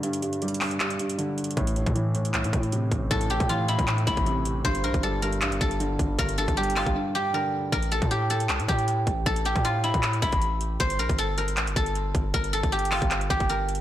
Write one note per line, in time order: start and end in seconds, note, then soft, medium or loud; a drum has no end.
0.00 0.03 G2 loud
0.00 0.21 G2 loud
0.00 0.61 D3 medium
0.00 0.42 G3 medium
0.00 closed hi-hat medium
0.13 closed hi-hat medium
0.22 0.59 G2 medium
0.22 closed hi-hat medium
0.33 closed hi-hat medium
0.42 1.38 G3 medium
0.42 closed hi-hat medium
0.48 closed hi-hat medium
0.54 closed hi-hat medium
0.61 0.78 G2 medium
0.61 clap loud
0.61 open hi-hat medium
0.71 closed hi-hat medium
0.80 0.98 G2 medium
0.80 clap loud
0.80 closed hi-hat medium
0.90 closed hi-hat medium
0.99 1.57 G2 medium
0.99 closed hi-hat medium
1.09 closed hi-hat medium
1.18 1.57 D3 medium
1.18 closed hi-hat medium
1.38 closed hi-hat soft
1.44 closed hi-hat medium
1.51 closed hi-hat medium
1.57 1.85 A1 loud
1.57 1.75 A2 loud
1.57 kick loud
1.57 closed hi-hat medium
1.67 closed hi-hat medium
1.76 2.13 A2 medium
1.76 closed hi-hat medium
1.86 2.35 A2 loud
1.86 kick loud
1.86 closed hi-hat medium
1.95 2.91 E3 medium
1.95 closed hi-hat medium
2.15 2.32 A2 medium
2.15 closed hi-hat medium
2.25 closed hi-hat medium
2.34 2.46 C2 loud
2.34 2.51 A2 medium
2.34 clap loud
2.34 closed hi-hat medium
2.44 2.53 A2 loud
2.44 closed hi-hat medium
2.53 3.10 A2 medium
2.53 2.90 A2 loud
2.53 kick loud
2.53 closed hi-hat medium
2.63 closed hi-hat medium
2.72 3.69 C3 medium
2.72 closed hi-hat medium
2.92 3.10 A1 loud
2.92 kick medium
2.92 closed hi-hat medium
3.11 3.39 A1 loud
3.11 3.28 A2 loud
3.11 4.90 A4 loud
3.11 kick loud
3.11 closed hi-hat medium
3.21 closed hi-hat medium
3.30 3.67 A2 medium
3.30 5.66 G4 medium
3.30 closed hi-hat medium
3.40 3.77 A2 loud
3.40 kick loud
3.40 closed hi-hat medium
3.49 4.46 E3 medium
3.49 3.74 F4 medium
3.49 closed hi-hat medium
3.68 3.86 A2 medium
3.68 4.07 E4 medium
3.68 closed hi-hat medium
3.79 4.06 A2 loud
3.79 kick medium
3.79 closed hi-hat medium
3.88 4.06 A2 loud
3.88 clap loud
3.88 closed hi-hat medium
3.98 closed hi-hat medium
4.07 4.62 A1 loud
4.07 4.65 A2 medium
4.07 6.68 E4 medium
4.07 kick loud
4.07 closed hi-hat medium
4.17 kick loud
4.17 closed hi-hat medium
4.26 4.64 C3 medium
4.26 closed hi-hat medium
4.45 closed hi-hat medium
4.64 4.85 G1 loud
4.64 4.82 G2 loud
4.64 6.63 C5 loud
4.64 kick loud
4.64 closed hi-hat medium
4.75 closed hi-hat medium
4.84 4.94 A#1 loud
4.84 5.21 G2 medium
4.84 5.09 A#4 medium
4.84 closed hi-hat medium
4.94 5.43 G1 loud
4.94 kick loud
4.94 closed hi-hat medium
5.03 5.99 G3 medium
5.03 5.28 A4 medium
5.03 closed hi-hat medium
5.22 5.41 G2 medium
5.22 5.67 A#4 medium
5.22 closed hi-hat medium
5.33 closed hi-hat medium
5.42 5.53 A1 loud
5.42 5.59 G2 medium
5.42 clap loud
5.42 closed hi-hat medium
5.52 5.60 G1 loud
5.52 closed hi-hat medium
5.61 5.98 G1 loud
5.61 6.17 G2 medium
5.61 6.25 A4 medium
5.61 kick loud
5.61 closed hi-hat medium
5.71 closed hi-hat medium
5.80 6.76 D3 medium
5.80 closed hi-hat medium
5.99 6.18 G1 loud
5.99 kick medium
5.99 closed hi-hat medium
6.19 6.47 G1 loud
6.19 6.36 G2 medium
6.19 6.44 A#4 loud
6.19 kick loud
6.19 closed hi-hat medium
6.29 closed hi-hat medium
6.38 6.75 G2 medium
6.38 7.40 A4 medium
6.38 closed hi-hat medium
6.48 6.85 G1 loud
6.48 kick loud
6.48 closed hi-hat medium
6.57 7.54 G3 medium
6.57 7.15 G4 medium
6.57 closed hi-hat soft
6.63 closed hi-hat medium
6.70 closed hi-hat medium
6.76 6.94 G2 medium
6.76 9.29 F4 medium
6.76 clap medium
6.76 open hi-hat medium
6.86 6.95 G1 loud
6.86 kick medium
6.86 closed hi-hat medium
6.95 7.14 G2 medium
7.15 7.73 G2 medium
7.15 8.11 G4 medium
7.34 7.72 D3 medium
7.34 7.72 A#4 medium
7.72 8.01 A1 loud
7.72 7.98 A#4 loud
7.72 kick loud
7.72 closed hi-hat medium
7.83 closed hi-hat medium
7.92 8.30 A4 medium
7.92 closed hi-hat medium
8.02 8.51 A2 loud
8.02 kick loud
8.02 closed hi-hat medium
8.11 8.68 G4 medium
8.11 closed hi-hat medium
8.30 9.26 A4 medium
8.30 closed hi-hat medium
8.40 closed hi-hat medium
8.49 8.61 C2 loud
8.49 clap loud
8.49 closed hi-hat medium
8.59 8.68 A2 loud
8.59 closed hi-hat medium
8.68 9.05 A2 loud
8.68 9.45 G4 medium
8.68 kick loud
8.68 closed hi-hat medium
8.79 closed hi-hat medium
8.88 closed hi-hat medium
9.07 9.25 A1 loud
9.07 kick medium
9.07 closed hi-hat medium
9.26 9.54 A1 loud
9.26 11.05 A4 loud
9.26 kick loud
9.26 closed hi-hat medium
9.36 closed hi-hat medium
9.45 11.81 G4 medium
9.45 closed hi-hat medium
9.56 9.93 A2 loud
9.56 kick loud
9.56 closed hi-hat medium
9.65 9.90 F4 medium
9.65 closed hi-hat medium
9.84 10.22 E4 medium
9.84 closed hi-hat medium
9.94 10.21 A2 loud
9.94 kick medium
9.94 closed hi-hat medium
10.03 clap loud
10.03 closed hi-hat medium
10.13 closed hi-hat medium
10.22 10.78 A1 loud
10.22 12.83 E4 medium
10.22 kick loud
10.22 closed hi-hat medium
10.32 kick loud
10.32 closed hi-hat medium
10.42 closed hi-hat medium
10.61 closed hi-hat medium
10.80 11.01 G1 loud
10.80 12.78 C5 loud
10.80 kick loud
10.80 closed hi-hat medium
10.90 closed hi-hat medium
10.99 11.09 A#1 loud
10.99 11.24 A#4 medium
10.99 closed hi-hat medium
11.09 11.58 G1 loud
11.09 kick loud
11.09 closed hi-hat medium
11.18 11.44 A4 medium
11.18 closed hi-hat medium
11.38 11.82 A#4 medium
11.38 closed hi-hat medium
11.48 closed hi-hat medium
11.57 11.69 A1 loud
11.57 clap loud
11.57 closed hi-hat medium
11.67 11.76 G1 loud
11.67 closed hi-hat medium
11.76 12.13 G1 loud
11.76 12.40 A4 medium
11.76 kick loud
11.76 closed hi-hat loud
11.86 closed hi-hat medium
11.95 closed hi-hat medium
12.15 12.33 G1 loud
12.15 kick medium
12.15 closed hi-hat medium
12.34 12.62 G1 loud
12.34 12.59 A#4 loud
12.34 kick loud
12.34 closed hi-hat medium
12.44 closed hi-hat medium
12.53 13.56 A4 loud
12.53 closed hi-hat medium
12.63 13.00 G1 loud
12.63 kick loud
12.63 closed hi-hat medium
12.72 13.30 G4 medium
12.72 closed hi-hat medium
12.79 closed hi-hat medium
12.85 closed hi-hat medium
12.92 13.81 F4 medium
12.92 clap loud
12.92 open hi-hat medium
13.02 13.29 G1 loud
13.02 kick medium
13.02 closed hi-hat medium
13.11 clap loud
13.11 closed hi-hat medium
13.21 closed hi-hat medium
13.30 13.81 G1 loud
13.30 13.81 G4 medium
13.30 kick loud
13.30 closed hi-hat medium
13.40 kick loud
13.40 closed hi-hat medium
13.49 13.81 A#4 medium
13.49 closed hi-hat medium
13.69 closed hi-hat soft
13.75 closed hi-hat medium